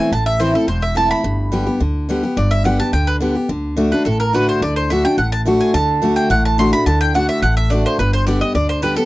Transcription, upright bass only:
0.12 0.53 A1 medium
0.68 1.10 E1 medium
1.24 1.66 G1 medium
1.80 2.22 D2 medium
2.37 2.79 G1 medium
2.93 3.35 D2 medium
3.49 3.91 D2 medium
4.06 4.47 A1 medium
4.61 5.03 D2 medium
5.18 5.59 A1 medium
5.74 6.15 D2 medium
6.30 6.72 A1 medium
6.86 7.28 D2 loud
7.42 7.84 A1 medium
7.99 8.40 G1 medium
8.55 8.96 D2 medium

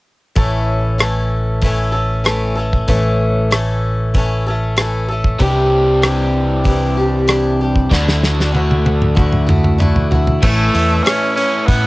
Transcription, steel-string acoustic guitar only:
0.35 0.98 A2 medium
0.35 0.98 E3 medium
0.35 0.99 A3 medium
0.35 0.99 C#4 medium
0.35 0.99 A4 medium
0.98 1.62 E3 soft
0.98 1.62 A3 soft
0.98 1.63 C#4 medium
0.98 1.63 A4 medium
1.63 1.93 E3 medium
1.63 1.94 A3 medium
1.63 1.93 C#4 medium
1.63 1.91 A4 medium
1.92 2.24 C#4 soft
1.92 2.24 A4 soft
1.96 2.24 A3 soft
2.24 2.56 E3 medium
2.24 2.56 A3 medium
2.24 2.56 C#4 medium
2.24 2.54 A4 medium
2.55 2.88 A3 soft
2.55 2.88 C#4 soft
2.55 2.87 A4 soft
2.88 3.50 A2 medium
2.88 3.50 E3 medium
2.88 3.50 A3 medium
2.88 3.51 C#4 medium
2.88 3.52 A4 medium
3.51 4.14 E3 medium
3.51 4.14 A3 medium
3.51 4.14 C#4 medium
3.51 4.15 A4 medium
4.14 4.45 E3 medium
4.14 4.46 A3 medium
4.14 4.46 C#4 medium
4.14 4.45 A4 medium
4.46 4.77 A3 soft
4.46 4.78 C#4 soft
4.46 4.77 A4 soft
4.78 5.08 E3 medium
4.78 5.09 A3 medium
4.78 5.09 C#4 medium
4.78 5.07 A4 medium
5.08 5.41 A3 soft
5.08 5.41 C#4 soft
5.08 5.39 A4 soft
5.39 6.02 C3 medium
5.39 6.02 E3 medium
5.39 6.03 G3 medium
5.39 6.05 D4 medium
5.39 6.04 G4 medium
6.03 6.64 E3 soft
6.03 6.64 G3 medium
6.03 6.66 D4 medium
6.03 6.66 G4 medium
6.64 6.96 E3 medium
6.64 6.97 G3 medium
6.64 6.97 D4 medium
6.64 6.96 G4 medium
6.97 7.27 G3 soft
6.97 7.28 D4 soft
6.97 7.28 G4 soft
7.27 7.59 E3 medium
7.27 7.59 G3 medium
7.27 7.60 D4 medium
7.31 7.60 G4 medium
7.61 7.92 G3 soft
7.61 7.91 D4 soft
7.61 7.91 G4 soft
7.91 8.51 D3 medium
7.91 8.54 A3 medium
7.91 8.54 E4 medium
7.91 8.55 F#4 medium
8.52 9.14 D3 medium
8.52 9.15 A3 soft
8.52 9.17 E4 medium
8.57 9.18 F#4 medium
9.15 9.47 D3 soft
9.15 9.48 A3 medium
9.15 9.47 E4 medium
9.15 9.45 F#4 medium
9.46 9.78 A3 soft
9.46 9.79 E4 soft
9.46 9.78 F#4 soft
9.78 10.10 D3 soft
9.78 10.11 A3 medium
9.78 10.11 E4 medium
9.78 10.09 F#4 medium
10.11 10.42 A3 soft
10.11 10.43 E4 soft
10.11 10.42 F#4 medium
10.42 10.73 A2 medium
10.42 10.74 E3 medium
10.42 10.74 A3 medium
10.42 10.72 C#4 medium
10.42 10.71 E4 medium
10.72 11.05 A3 soft
10.72 11.05 C#4 soft
10.72 11.04 E4 soft
11.04 11.36 E3 soft
11.04 11.37 A3 medium
11.04 11.36 C#4 soft
11.04 11.34 E4 medium
11.35 11.87 A3 soft
11.35 11.87 C#4 soft
11.35 11.87 E4 soft

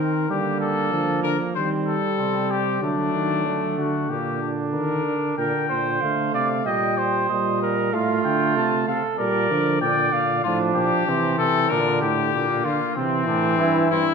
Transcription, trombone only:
0.29 0.94 D3 medium
0.93 1.57 F3 medium
1.56 2.84 G3 medium
2.82 3.47 F#3 medium
3.46 4.08 D3 medium
4.09 5.35 D3 medium
5.38 5.98 D3 medium
6.02 6.67 A3 medium
6.65 7.29 G3 medium
7.30 7.95 G3 medium
7.93 9.02 A3 medium
9.19 9.52 G3 medium
9.51 9.81 F3 medium
9.82 10.43 D3 medium
10.45 11.07 F3 medium
11.07 11.73 E3 medium
11.71 12.69 D3 medium
12.97 14.14 E3 loud

